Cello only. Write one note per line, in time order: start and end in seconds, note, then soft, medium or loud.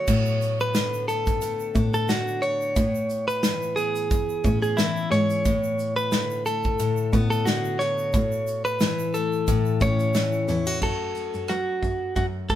0.08 1.57 A2 medium
1.76 2.31 A2 loud
2.76 4.25 A2 loud
4.45 5.00 A2 loud
5.11 5.39 G#2 loud
5.46 6.94 A2 medium
7.13 7.68 A2 loud
8.14 9.63 A2 medium
9.81 10.36 A2 loud
10.48 10.76 E2 medium
10.82 11.25 F#2 medium
11.34 11.47 F#2 medium
11.49 11.77 F#3 medium
11.83 12.10 F#2 medium
12.16 12.44 F#2 medium
12.50 12.55 G#2 medium